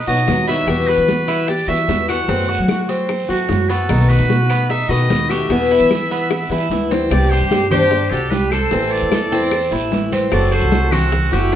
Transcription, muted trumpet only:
0.07 0.45 D#5 medium
0.48 0.89 E5 loud
0.88 1.49 B4 loud
1.48 1.69 D5 medium
1.68 2.08 E5 medium
2.09 2.85 F#5 loud
3.30 3.71 F#4 medium
3.69 4.10 A4 medium
4.09 4.69 B4 loud
4.69 4.91 E5 loud
4.89 5.30 D#5 medium
5.29 6.90 E5 medium
7.11 7.32 D5 medium
7.30 7.70 C5 loud
7.70 8.12 G4 medium
8.10 8.32 A4 medium
8.30 8.52 B4 medium
8.50 8.92 C5 loud
8.91 9.72 D5 medium
10.32 10.53 D5 medium
10.52 10.94 C5 loud
10.92 11.34 F#4 loud
11.33 11.54 G4 medium

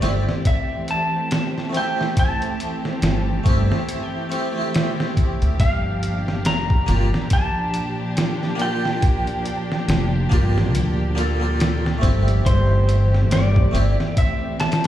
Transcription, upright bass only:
0.02 0.24 G1 medium
3.03 3.41 G1 medium
3.46 3.67 G1 medium
5.42 5.58 D2 medium
5.60 6.45 G1 medium
6.45 6.84 F1 medium
6.89 7.10 G1 medium
9.88 10.27 F1 medium
10.32 10.74 G1 medium
10.74 11.99 D2 loud
12.03 12.41 G1 loud
12.46 13.28 G1 loud
13.31 13.69 G1 medium
13.74 13.96 G1 medium

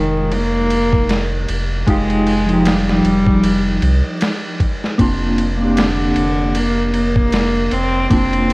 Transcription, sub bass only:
0.00 1.45 F1 medium
1.49 1.84 F1 loud
1.87 3.01 F1 medium
3.04 3.79 F1 medium
3.82 4.02 C2 medium
4.99 6.13 F1 loud
6.16 7.69 F1 medium
7.72 8.07 F1 medium
8.11 8.53 F1 loud

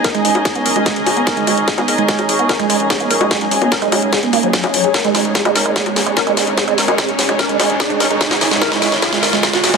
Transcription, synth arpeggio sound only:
0.04 0.07 A#4 loud
0.15 0.19 G#3 loud
0.25 0.29 G#3 loud
0.45 0.50 G#4 medium
0.55 0.60 B3 medium
0.66 0.68 A#4 loud
0.76 0.80 G#3 loud
0.86 0.91 G#3 loud
1.06 1.11 G#4 medium
1.17 1.21 B3 medium
1.27 1.30 A#4 loud
1.37 1.42 G#3 loud
1.47 1.52 G#3 loud
1.68 1.72 G#4 medium
1.78 1.82 B3 medium
1.88 1.91 A#4 loud
1.98 2.03 G#3 loud
2.09 2.13 G#3 loud
2.29 2.33 G#4 medium
2.39 2.44 B3 medium
2.49 2.52 A#4 loud
2.60 2.64 G#3 loud
2.70 2.74 G#3 loud
2.90 2.95 G#4 medium
3.00 3.05 B3 medium
3.11 3.13 A#4 loud
3.21 3.25 G#3 loud
3.31 3.35 G#3 loud
3.51 3.56 G#4 medium
3.62 3.66 B3 medium
3.72 3.74 A#4 loud
3.82 3.86 G#3 loud
3.92 3.97 G#3 loud
4.13 4.17 G#4 medium
4.23 4.27 B3 medium
4.33 4.36 A#3 loud
4.43 4.46 F#3 medium
4.53 4.56 F#3 medium
4.74 4.78 F#3 medium
4.84 4.89 G#4 medium
4.94 4.97 A#4 loud
5.04 5.09 G#3 loud
5.15 5.19 G#3 loud
5.35 5.40 G#4 medium
5.45 5.50 G#3 loud
5.55 5.58 A#4 loud
5.66 5.70 G#3 loud
5.76 5.80 G#3 loud
5.96 6.01 G#4 medium
6.07 6.11 G#3 loud
6.17 6.19 A#4 loud
6.27 6.31 G#3 loud
6.37 6.42 G#3 loud
6.58 6.62 G#4 medium
6.68 6.72 G#3 loud
6.78 6.81 A#4 loud
6.88 6.93 G#3 loud
6.98 7.03 G#3 loud
7.19 7.23 G#4 medium
7.29 7.33 G#3 loud
7.39 7.42 A#4 loud
7.49 7.54 G#3 loud
7.60 7.64 G#3 loud
7.80 7.84 G#4 medium
7.90 7.95 G#3 loud
8.00 8.03 A#4 loud
8.11 8.15 G#3 loud
8.21 8.25 G#3 loud
8.41 8.46 G#4 medium
8.51 8.56 G#3 loud
8.62 8.64 A#4 loud
8.72 8.76 G#3 loud
8.82 8.86 G#3 loud
9.02 9.07 G#4 medium
9.13 9.17 G#3 loud
9.23 9.25 A#4 loud
9.33 9.37 G#3 medium
9.43 9.48 G#3 loud
9.64 9.68 G#4 medium
9.74 9.77 G#3 loud

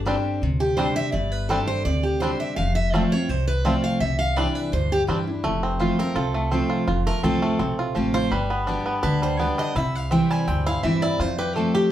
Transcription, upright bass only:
0.00 0.14 G1 medium
0.42 0.86 D2 medium
1.13 1.57 G1 medium
1.85 2.29 D2 medium
2.57 3.01 F1 medium
3.29 3.73 C2 medium
4.00 4.44 C2 medium
4.72 5.03 D2 medium
5.08 5.39 E2 medium
5.44 5.88 F1 medium
6.15 6.60 C2 medium
6.87 7.10 F1 loud
7.23 7.54 C2 medium
7.59 7.90 B1 medium
7.95 8.26 A1 medium
8.31 8.75 G1 medium
9.03 9.48 D2 medium
9.75 10.19 C2 medium
10.47 10.78 D2 medium
10.84 11.14 E2 medium
11.19 11.64 F2 medium

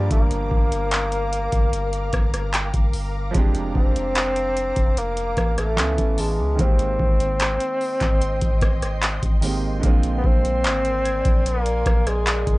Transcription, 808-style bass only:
0.11 0.50 G1 loud
0.51 1.49 G1 loud
1.53 2.11 G1 loud
2.13 2.72 G1 loud
2.74 3.32 G1 loud
3.35 3.74 F1 loud
3.75 4.73 F1 loud
4.77 5.35 F1 loud
5.37 5.80 A1 loud
5.78 5.98 C#2 loud
5.98 6.41 A1 loud
6.39 6.58 C#2 loud
6.59 6.98 G#1 loud
7.00 7.58 G#1 loud
8.01 8.40 G#1 loud
8.42 9.19 G#1 medium
9.23 9.81 G#1 loud
9.84 10.22 A#1 loud
10.24 10.67 A#1 loud
10.65 11.23 G#1 loud
11.25 11.84 A#1 loud
11.86 12.44 A#1 loud
12.47 12.58 G1 loud

